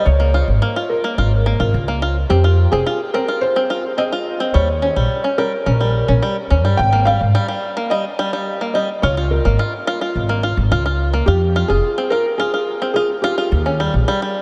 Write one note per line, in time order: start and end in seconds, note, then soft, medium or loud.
0.05 0.40 C#2 medium
0.05 0.92 C#5 medium
0.20 0.33 A#3 medium
0.34 0.47 F4 medium
0.48 0.57 G#1 medium
0.62 0.75 A#3 medium
0.76 1.03 F4 medium
0.90 1.70 A#4 medium
1.04 1.17 A#3 medium
1.18 1.52 G#1 medium
1.18 1.32 F4 medium
1.46 1.59 A#3 medium
1.60 1.69 G#1 medium
1.60 1.87 F4 medium
1.74 2.22 C#2 medium
1.88 2.01 A#3 medium
2.02 2.16 F4 medium
2.29 2.65 F2 loud
2.29 2.43 C4 medium
2.29 2.73 G4 medium
2.44 2.71 F4 medium
2.72 2.82 F1 medium
2.72 2.85 C4 medium
2.72 3.15 G#4 loud
2.86 3.00 F4 medium
3.14 3.27 C4 medium
3.14 3.40 A#4 loud
3.28 3.55 F4 medium
3.41 4.00 C5 loud
3.56 3.69 C4 medium
3.70 3.84 F4 medium
3.98 4.11 C4 medium
3.98 4.56 D#5 loud
4.12 4.39 F4 medium
4.40 4.53 C4 medium
4.54 4.89 D#2 medium
4.54 4.68 G3 medium
4.54 5.34 C#5 loud
4.82 4.95 C#4 medium
4.96 5.06 A#1 medium
4.96 5.23 G3 medium
5.24 5.37 C#4 medium
5.38 5.52 G3 medium
5.38 6.19 A#4 loud
5.66 6.01 A#1 medium
5.66 5.79 C#4 medium
5.81 6.07 G3 medium
6.08 6.18 A#1 medium
6.08 6.21 C#4 medium
6.22 6.36 G3 medium
6.50 6.65 D#2 medium
6.50 6.63 C#4 medium
6.65 6.74 G2 loud
6.65 6.79 G3 medium
6.77 7.13 G#1 medium
6.77 7.07 G5 loud
6.93 7.05 A#3 medium
7.05 7.20 G3 medium
7.05 7.93 F5 loud
7.21 7.30 G#2 medium
7.35 7.47 G3 loud
7.48 7.75 G3 medium
7.77 7.90 A#3 medium
7.90 8.04 G3 medium
7.90 8.72 D#5 loud
8.19 8.32 G3 loud
8.33 8.60 G3 medium
8.61 8.74 A#3 medium
8.74 8.88 G3 medium
8.74 9.03 D#5 medium
9.02 9.38 C#2 medium
9.02 9.16 F4 loud
9.02 9.32 C#5 medium
9.17 9.44 F4 medium
9.31 9.83 A#4 medium
9.45 9.54 G#1 medium
9.45 9.58 A#3 medium
9.59 9.73 F4 medium
9.87 10.00 F4 loud
10.01 10.28 F4 medium
10.15 10.50 G#1 medium
10.29 10.42 A#3 medium
10.43 10.57 F4 medium
10.57 10.66 G#1 medium
10.71 11.20 C#2 medium
10.71 10.84 F4 loud
10.86 11.12 F4 medium
11.13 11.26 A#3 medium
11.26 11.62 F2 medium
11.26 11.41 F4 medium
11.26 11.70 G4 medium
11.56 11.69 F4 loud
11.68 11.79 F1 medium
11.68 11.96 F4 medium
11.68 12.12 G#4 loud
11.98 12.10 C4 medium
12.10 12.25 F4 medium
12.10 12.37 A#4 loud
12.38 12.53 F4 loud
12.38 12.92 G#4 loud
12.54 12.80 F4 medium
12.82 12.94 C4 medium
12.94 13.09 F4 medium
12.94 13.00 G#4 medium
13.22 13.37 F4 loud
13.22 14.42 G4 medium
13.38 13.52 F4 medium
13.52 13.86 D#2 medium
13.66 13.79 C#4 medium
13.80 13.93 G3 medium
13.94 14.03 A#1 medium
14.08 14.21 G3 loud
14.22 14.42 G3 medium